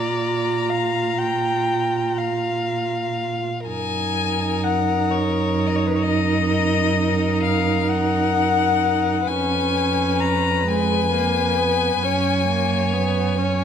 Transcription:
Already playing: A#2 F4 D5 A#5
0.70 F5
1.18 G5
2.18 F5
3.67 F#2 D#4 A#4 G#5
4.64 F#5
5.11 C#5
5.67 D#5
5.76 C#5
5.87 B4
5.95 C#5
6.03 D#5
6.50 A#4
7.43 F5
7.88 F#5
9.27 F2 C#4 B4 G#5
10.20 A#5
10.66 G#3 G#5
11.12 A#3
11.58 B3
12.03 F#2 C#4 C#5
12.48 A#3
12.93 B3
13.38 C#4 C#5

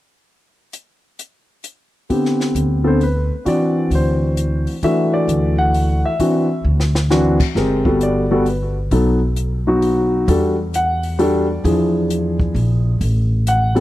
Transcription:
0.73 closed hi-hat
1.19 closed hi-hat
1.64 closed hi-hat
2.09 D3 B3 C4 G4, kick, open hi-hat
2.25 snare
2.40 snare
2.55 D2, closed hi-hat
2.84 D3 B3 C4 A4 C5
3.01 B4, open hi-hat
3.45 E3 C4 D4 F#4 D5, kick, open hi-hat
3.91 D2, open hi-hat
3.95 C5
4.37 closed hi-hat
4.67 open hi-hat
4.83 E3 A3 D4 F#4 E5, kick, open hi-hat
5.14 D5
5.28 D2, closed hi-hat
5.58 F#5
5.74 open hi-hat
6.06 E5
6.20 E3 C4 D4 F#4, kick, open hi-hat
6.65 D2
6.80 snare
6.95 snare
7.10 E3 C4 D4 F#4, snare
7.40 kick, crash
7.55 G1 G#3 C4 G4 A#4, kick, snare
7.85 G3 B3 F#4 A4, kick
8.01 D5, closed hi-hat
8.31 G3 B3 F#4 A4
8.46 B4, open hi-hat
8.91 B1 F#3 B3 D#4 A4, kick, open hi-hat
9.36 closed hi-hat
9.67 F#3 B3 D#4 F#4
9.82 open hi-hat
10.28 E2 G3 D4 F#4 A4, kick, open hi-hat
10.74 F#5, closed hi-hat
11.03 open hi-hat
11.19 G3 D4 F#4 A4 D5, open hi-hat
11.64 E2 F3 D4 E4 G#4, kick, open hi-hat
12.10 closed hi-hat
12.40 kick
12.55 A#1, open hi-hat
13.01 A1, kick, open hi-hat
13.47 F#5, closed hi-hat
13.75 G3 B3 C4 A4, open hi-hat

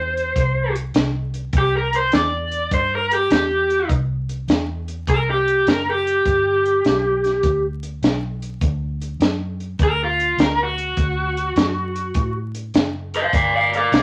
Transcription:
Already playing: E2 C5
0.17 closed hi-hat
0.36 C2, kick, closed hi-hat
0.75 closed hi-hat
0.94 C2, snare, closed hi-hat
1.34 closed hi-hat
1.53 C2, kick, closed hi-hat
1.58 G4
1.77 A#4
1.93 C5, closed hi-hat
2.12 E2 D5, snare, closed hi-hat
2.51 closed hi-hat
2.71 G2 C5, kick, closed hi-hat
2.95 A#4
3.11 G4, closed hi-hat
3.30 E2 G4, snare, closed hi-hat
3.70 closed hi-hat
3.89 C2, kick, closed hi-hat
4.29 closed hi-hat
4.48 E2, snare, closed hi-hat
4.88 closed hi-hat
5.07 C2 A#4, kick, closed hi-hat
5.30 G4
5.48 closed hi-hat
5.67 F#1 A#4, snare, closed hi-hat
5.90 G4
6.07 closed hi-hat
6.25 G1, kick, closed hi-hat
6.66 closed hi-hat
6.85 B1, snare, closed hi-hat
7.24 snare, closed hi-hat
7.43 D2, kick, closed hi-hat
7.83 closed hi-hat
8.02 B1, snare, closed hi-hat
8.42 closed hi-hat
8.61 D2, kick, closed hi-hat
9.02 closed hi-hat
9.20 F#2, snare, closed hi-hat
9.60 closed hi-hat
9.79 D2, kick, closed hi-hat
9.83 A#4
10.04 F4
10.20 closed hi-hat
10.37 D2, snare, closed hi-hat
10.42 A#4
10.63 F#4
10.78 closed hi-hat
10.97 D2, kick, closed hi-hat
11.37 closed hi-hat
11.56 F#2, snare, closed hi-hat
11.96 closed hi-hat
12.14 A2, kick, closed hi-hat
12.55 closed hi-hat
12.74 F#1, snare, closed hi-hat
13.14 C5 F5, closed hi-hat
13.33 G1 D5 F5, kick, closed hi-hat
13.55 D5 F5
13.74 A#4 D5, closed hi-hat
13.92 B1 A#4 D5, snare, closed hi-hat

